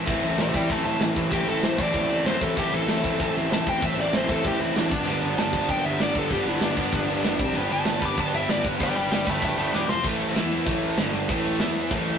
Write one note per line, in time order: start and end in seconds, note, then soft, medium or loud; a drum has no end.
0.06 0.21 A1 medium
0.06 0.25 A2 loud
0.06 0.24 E3 loud
0.06 0.24 A3 loud
0.06 0.23 C4 loud
0.06 0.22 E4 loud
0.06 kick loud
0.06 crash loud
0.06 crash medium
0.23 0.37 A1 loud
0.23 0.37 A2 medium
0.23 0.38 E3 medium
0.23 0.38 A3 medium
0.23 0.39 C4 medium
0.23 0.40 E4 medium
0.23 crash medium
0.38 0.53 A1 medium
0.38 0.55 A2 medium
0.38 0.55 E3 medium
0.38 0.54 A3 loud
0.38 0.54 C4 loud
0.38 0.53 E4 loud
0.38 0.55 C5 medium
0.38 snare loud
0.38 crash medium
0.42 0.56 E5 loud
0.54 0.68 A1 medium
0.54 0.68 A2 medium
0.54 0.69 E3 medium
0.54 0.70 A3 medium
0.54 0.70 C4 medium
0.54 0.71 E4 loud
0.54 0.70 D5 medium
0.54 0.71 G5 medium
0.54 kick medium
0.54 crash medium
0.69 0.84 A1 medium
0.69 0.87 A2 loud
0.69 0.86 E3 loud
0.69 0.86 A3 loud
0.69 0.85 C4 loud
0.69 0.84 E4 loud
0.69 0.86 E5 medium
0.69 0.84 A5 loud
0.69 kick loud
0.69 crash medium
0.85 0.99 A1 medium
0.85 1.00 A2 medium
0.85 1.01 E3 medium
0.85 1.01 A3 medium
0.85 1.02 C4 medium
0.85 1.03 E4 medium
0.85 1.01 A5 medium
0.85 crash medium
1.00 1.15 A1 medium
1.00 1.18 A2 medium
1.00 1.18 E3 loud
1.00 1.17 A3 loud
1.00 1.17 C4 loud
1.00 1.16 E4 loud
1.00 snare loud
1.00 crash medium
1.16 1.30 A1 medium
1.16 1.32 A2 medium
1.16 1.32 E3 medium
1.16 1.33 A3 medium
1.16 1.34 C4 medium
1.16 1.34 E4 medium
1.16 kick medium
1.16 crash medium
1.32 1.46 A1 loud
1.32 1.50 A2 loud
1.32 1.50 E3 medium
1.32 1.49 A3 loud
1.32 1.48 C4 loud
1.32 1.47 E4 loud
1.32 1.48 G4 loud
1.32 kick loud
1.32 crash medium
1.47 1.61 A1 loud
1.47 1.63 A2 medium
1.47 1.63 E3 medium
1.47 1.64 A3 medium
1.47 1.65 C4 loud
1.47 1.65 E4 loud
1.47 1.63 A4 medium
1.47 crash medium
1.63 1.77 A1 loud
1.63 1.80 A2 medium
1.63 1.80 E3 loud
1.63 1.79 A3 loud
1.63 1.79 C4 loud
1.63 1.78 E4 loud
1.63 1.82 C5 medium
1.63 snare loud
1.63 crash medium
1.78 1.92 A1 medium
1.78 1.93 A2 medium
1.78 1.94 E3 medium
1.78 1.94 A3 medium
1.78 1.95 C4 loud
1.78 1.95 E4 loud
1.78 2.26 D5 medium
1.78 kick medium
1.78 crash medium
1.93 2.08 A1 loud
1.93 2.11 A2 loud
1.93 2.11 E3 loud
1.93 2.10 A3 loud
1.93 2.10 C4 loud
1.93 2.08 E4 loud
1.93 kick loud
1.93 crash medium
2.09 2.23 A1 loud
2.09 2.24 A2 medium
2.09 2.25 E3 medium
2.09 2.25 A3 medium
2.09 2.26 C4 medium
2.09 2.26 E4 loud
2.09 crash medium
2.24 2.39 A1 medium
2.24 2.43 A2 loud
2.24 2.42 E3 loud
2.24 2.42 A3 loud
2.24 2.41 C4 loud
2.24 2.41 E4 loud
2.24 2.43 C5 medium
2.24 snare loud
2.24 crash loud
2.41 2.55 A1 medium
2.41 2.56 A2 medium
2.41 2.57 E3 medium
2.41 2.57 A3 medium
2.41 2.58 C4 loud
2.41 2.58 E4 loud
2.41 2.57 A4 medium
2.41 kick medium
2.41 crash medium
2.56 2.71 A1 medium
2.56 2.74 A2 loud
2.56 2.74 E3 loud
2.56 2.73 A3 loud
2.56 2.73 C4 loud
2.56 2.72 E4 loud
2.56 2.73 G4 medium
2.56 kick loud
2.56 crash medium
2.72 2.86 A1 loud
2.72 2.87 A2 medium
2.72 2.88 E3 medium
2.72 2.88 A3 medium
2.72 2.89 C4 loud
2.72 2.89 E4 loud
2.72 3.34 A4 medium
2.72 crash medium
2.87 3.02 A1 medium
2.87 3.05 A2 medium
2.87 3.05 E3 loud
2.87 3.05 A3 loud
2.87 3.04 C4 loud
2.87 3.03 E4 loud
2.87 snare loud
2.87 crash medium
3.04 3.18 A1 medium
3.04 3.18 A2 medium
3.04 3.19 E3 medium
3.04 3.19 A3 medium
3.04 3.20 C4 medium
3.04 3.20 E4 loud
3.04 kick medium
3.04 crash medium
3.19 3.33 A1 loud
3.19 3.36 A2 loud
3.19 3.37 E3 loud
3.19 3.36 A3 loud
3.19 3.35 C4 loud
3.19 3.35 E4 loud
3.19 kick loud
3.19 crash medium
3.36 3.49 A1 loud
3.36 3.50 A2 medium
3.36 3.51 E3 medium
3.36 3.51 A3 medium
3.36 3.52 C4 medium
3.36 3.52 E4 loud
3.36 crash medium
3.51 3.65 A1 medium
3.51 3.68 A2 loud
3.51 3.68 E3 loud
3.51 3.68 A3 loud
3.51 3.67 C4 loud
3.51 3.66 E4 loud
3.51 3.67 A5 medium
3.51 snare loud
3.51 crash medium
3.67 3.80 A1 medium
3.67 3.81 A2 medium
3.67 3.82 E3 medium
3.67 3.82 A3 medium
3.67 3.83 C4 medium
3.67 3.84 E4 loud
3.67 3.85 G5 loud
3.67 kick medium
3.67 crash medium
3.82 3.96 A1 medium
3.82 3.99 A2 loud
3.82 3.99 E3 medium
3.82 3.99 A3 loud
3.82 3.98 C4 loud
3.82 3.97 E4 loud
3.82 3.98 E5 medium
3.82 kick loud
3.82 crash medium
3.97 4.11 A1 loud
3.97 4.13 A2 medium
3.97 4.13 E3 medium
3.97 4.14 A3 medium
3.97 4.15 C4 medium
3.97 4.15 E4 medium
3.97 4.16 D5 medium
3.97 crash medium
4.13 4.27 A1 medium
4.13 4.30 A2 medium
4.13 4.30 E3 medium
4.13 4.29 A3 loud
4.13 4.29 C4 medium
4.13 4.28 E4 loud
4.13 4.31 C5 loud
4.13 snare loud
4.13 crash medium
4.29 4.43 A1 medium
4.29 4.43 A2 medium
4.29 4.44 E3 medium
4.29 4.44 A3 loud
4.29 4.45 C4 medium
4.29 4.46 E4 medium
4.29 4.45 A4 loud
4.29 kick medium
4.29 crash medium
4.44 4.58 A1 loud
4.44 4.60 A2 medium
4.44 4.60 E3 loud
4.44 4.59 A3 loud
4.44 4.58 C4 loud
4.44 4.58 E4 loud
4.44 4.61 G4 medium
4.44 kick loud
4.44 crash medium
4.59 4.74 A1 medium
4.59 4.74 A2 medium
4.59 4.75 E3 medium
4.59 4.75 A3 medium
4.59 4.76 C4 medium
4.59 4.76 E4 medium
4.59 4.75 E4 loud
4.59 crash medium
4.75 4.89 A1 medium
4.75 4.90 A2 loud
4.75 4.90 E3 medium
4.75 4.90 A3 loud
4.75 4.91 C4 loud
4.75 4.91 D4 medium
4.75 4.91 E4 loud
4.75 snare loud
4.75 crash medium
4.90 5.05 G1 medium
4.90 5.06 G2 medium
4.90 5.06 D3 medium
4.90 5.07 G3 loud
4.90 5.07 B3 medium
4.90 5.22 D4 loud
4.90 5.08 D4 loud
4.90 kick loud
4.90 crash medium
5.06 5.20 G1 loud
5.06 5.24 G2 loud
5.06 5.23 D3 medium
5.06 5.23 G3 medium
5.06 5.22 B3 medium
5.06 5.21 D4 loud
5.06 crash medium
5.22 5.36 G1 medium
5.22 5.37 G2 medium
5.22 5.37 D3 medium
5.22 5.38 G3 medium
5.22 5.39 B3 medium
5.22 5.40 D4 loud
5.22 crash medium
5.37 5.51 G1 medium
5.37 5.54 G2 medium
5.37 5.54 D3 medium
5.37 5.54 G3 loud
5.37 5.53 B3 loud
5.37 5.52 D4 loud
5.37 5.68 A5 loud
5.37 snare loud
5.37 crash medium
5.53 5.67 G1 medium
5.53 5.68 G2 medium
5.53 5.69 D3 medium
5.53 5.70 G3 medium
5.53 5.70 B3 medium
5.53 5.70 D4 medium
5.53 kick medium
5.53 crash medium
5.68 5.83 G1 loud
5.68 5.86 G2 loud
5.68 5.86 D3 loud
5.68 5.85 G3 loud
5.68 5.84 B3 loud
5.68 5.83 D4 loud
5.68 5.85 G5 medium
5.68 kick loud
5.68 crash medium
5.84 5.98 G1 medium
5.84 5.99 G2 medium
5.84 6.00 D3 medium
5.84 6.01 G3 medium
5.84 6.01 B3 medium
5.84 6.01 D4 loud
5.84 6.00 E5 loud
5.84 crash medium
6.00 6.14 G1 medium
6.00 6.15 G2 loud
6.00 6.15 D3 loud
6.00 6.15 G3 loud
6.00 6.14 B3 loud
6.00 6.13 D4 loud
6.00 6.16 D5 medium
6.00 snare loud
6.00 crash medium
6.14 6.29 G1 medium
6.14 6.29 G2 medium
6.14 6.29 D3 medium
6.14 6.30 G3 medium
6.14 6.30 B3 medium
6.14 6.31 D4 loud
6.14 kick medium
6.14 crash medium
6.18 6.32 A4 medium
6.30 6.45 G1 medium
6.30 6.47 G2 medium
6.30 6.46 D3 loud
6.30 6.46 G3 loud
6.30 6.45 B3 loud
6.30 6.44 D4 loud
6.30 6.48 G4 loud
6.30 kick loud
6.30 crash medium
6.46 6.60 G1 loud
6.46 6.60 G2 medium
6.46 6.60 D3 medium
6.46 6.62 G3 medium
6.46 6.62 B3 medium
6.46 6.63 D4 medium
6.46 6.63 E4 loud
6.46 crash medium
6.61 6.76 G1 loud
6.61 6.78 G2 medium
6.61 6.77 D3 medium
6.61 6.78 G3 loud
6.61 6.76 B3 loud
6.61 6.75 D4 loud
6.61 7.54 D4 loud
6.61 snare loud
6.61 crash medium
6.77 6.91 G1 medium
6.77 6.91 G2 medium
6.77 6.92 D3 medium
6.77 6.93 G3 medium
6.77 6.92 B3 loud
6.77 6.93 D4 loud
6.77 kick medium
6.77 crash medium
6.92 7.06 G1 loud
6.92 7.08 G2 loud
6.92 7.08 D3 loud
6.92 7.08 G3 loud
6.92 7.07 B3 loud
6.92 7.06 D4 loud
6.92 kick loud
6.92 crash medium
7.07 7.22 G1 medium
7.07 7.22 G2 medium
7.07 7.22 D3 medium
7.07 7.24 G3 medium
7.07 7.23 B3 loud
7.07 7.24 D4 medium
7.07 crash medium
7.23 7.40 G1 loud
7.23 7.38 G2 loud
7.23 7.39 D3 loud
7.23 7.40 G3 loud
7.23 7.39 B3 loud
7.23 7.39 D4 loud
7.23 snare loud
7.23 crash medium
7.39 7.53 C2 medium
7.39 7.54 C3 medium
7.39 7.54 G3 loud
7.39 7.55 C4 loud
7.39 7.56 G4 loud
7.39 kick loud
7.39 crash medium
7.54 7.69 G1 loud
7.54 7.72 G3 loud
7.54 7.72 B3 loud
7.54 7.71 D4 loud
7.54 7.71 G4 loud
7.54 7.70 B4 loud
7.54 crash medium
7.70 7.85 G1 medium
7.70 7.85 G3 medium
7.70 7.86 B3 medium
7.70 7.86 D4 medium
7.70 7.87 G4 medium
7.70 7.87 B4 medium
7.70 8.02 A5 loud
7.70 crash medium
7.85 8.00 G1 medium
7.85 8.03 G3 loud
7.85 8.03 B3 loud
7.85 8.02 D4 loud
7.85 8.01 G4 medium
7.85 8.01 B4 loud
7.85 snare loud
7.85 crash medium
8.02 8.16 G1 medium
8.02 8.16 G3 medium
8.02 8.17 B3 medium
8.02 8.18 D4 medium
8.02 8.18 G4 medium
8.02 8.19 B4 medium
8.02 8.19 D6 loud
8.02 kick medium
8.02 crash medium
8.17 8.32 G1 loud
8.17 8.34 G3 loud
8.17 8.34 B3 loud
8.17 8.33 D4 loud
8.17 8.33 G4 loud
8.17 8.32 B4 loud
8.17 8.34 A5 loud
8.17 kick medium
8.17 crash medium
8.33 8.47 G1 medium
8.33 8.47 G3 medium
8.33 8.48 B3 medium
8.33 8.49 D4 medium
8.33 8.49 G4 loud
8.33 8.49 B4 loud
8.33 8.49 E5 loud
8.33 crash medium
8.48 8.63 G1 medium
8.48 8.65 G3 loud
8.48 8.64 B3 loud
8.48 8.64 D4 loud
8.48 8.63 G4 loud
8.48 8.62 B4 loud
8.48 8.65 D5 loud
8.48 snare loud
8.48 crash medium
8.63 8.78 G1 medium
8.63 8.78 G3 medium
8.63 8.79 B3 medium
8.63 8.80 D4 medium
8.63 8.80 G4 medium
8.63 8.81 B4 medium
8.63 kick medium
8.63 crash medium
8.80 8.94 G1 medium
8.80 8.97 G3 loud
8.80 8.96 B3 loud
8.80 8.95 D4 loud
8.80 8.95 G4 loud
8.80 8.94 B4 loud
8.80 8.95 D5 medium
8.80 8.96 G5 loud
8.80 kick loud
8.80 crash loud
8.96 9.10 G1 loud
8.96 9.09 G3 medium
8.96 9.10 B3 medium
8.96 9.11 D4 medium
8.96 9.12 G4 medium
8.96 9.12 B4 medium
8.96 9.10 D5 medium
8.96 9.12 G5 medium
8.96 crash medium
9.11 9.26 G1 medium
9.11 9.28 G3 medium
9.11 9.28 B3 medium
9.11 9.27 D4 medium
9.11 9.26 G4 loud
9.11 9.26 B4 loud
9.11 9.29 D5 medium
9.11 9.30 G5 loud
9.11 snare loud
9.11 crash medium
9.27 9.41 G1 medium
9.27 9.41 G3 medium
9.27 9.42 B3 medium
9.27 9.42 D4 medium
9.27 9.43 G4 medium
9.27 9.43 B4 loud
9.27 9.43 E5 medium
9.27 9.44 A5 medium
9.27 kick medium
9.27 crash medium
9.42 9.56 G1 loud
9.42 9.59 G3 medium
9.42 9.58 B3 loud
9.42 9.58 D4 loud
9.42 9.57 G4 loud
9.42 9.56 B4 loud
9.42 9.58 E5 medium
9.42 9.59 A5 loud
9.42 kick loud
9.42 crash medium
9.57 9.71 G1 medium
9.57 9.72 G3 medium
9.57 9.73 B3 medium
9.57 9.73 D4 medium
9.57 9.74 G4 medium
9.57 9.75 B4 medium
9.57 9.73 E5 medium
9.57 9.73 A5 medium
9.57 crash medium
9.73 9.87 E1 medium
9.73 9.88 G3 medium
9.73 9.88 B3 loud
9.73 9.89 D4 loud
9.73 9.89 G4 loud
9.73 9.89 B4 loud
9.73 9.88 A5 medium
9.73 9.89 D6 medium
9.73 snare medium
9.89 10.03 F1 medium
9.89 10.04 F3 loud
9.89 10.04 C4 loud
9.89 10.04 F4 medium
9.89 10.04 C5 loud
9.89 10.04 C6 loud
9.89 snare loud
10.04 10.33 A1 medium
10.04 10.35 A2 loud
10.04 10.35 E3 loud
10.04 10.36 A3 loud
10.04 kick loud
10.04 crash loud
10.04 crash medium
10.21 crash medium
10.35 10.65 E2 medium
10.35 10.65 E3 medium
10.35 10.66 B3 medium
10.35 10.66 E4 medium
10.35 snare loud
10.35 crash medium
10.52 crash medium
10.66 10.96 A1 loud
10.66 10.97 A2 loud
10.66 10.97 E3 loud
10.66 10.98 A3 loud
10.66 kick loud
10.66 crash medium
10.83 crash medium
10.97 11.27 G1 medium
10.97 11.29 G2 medium
10.97 11.28 D3 loud
10.97 11.29 G3 loud
10.97 snare loud
10.97 crash medium
11.13 crash medium
11.28 11.58 A1 medium
11.28 11.59 A2 medium
11.28 11.59 E3 loud
11.28 11.60 A3 loud
11.28 kick loud
11.28 crash medium
11.45 crash medium
11.59 11.90 E2 medium
11.59 11.90 E3 medium
11.59 11.91 B3 loud
11.59 11.91 E4 loud
11.59 snare loud
11.59 crash medium
11.75 crash medium
11.90 12.18 A1 loud
11.90 12.18 A2 loud
11.90 12.18 E3 loud
11.90 12.18 A3 loud
11.90 kick loud
11.90 crash medium
12.06 crash medium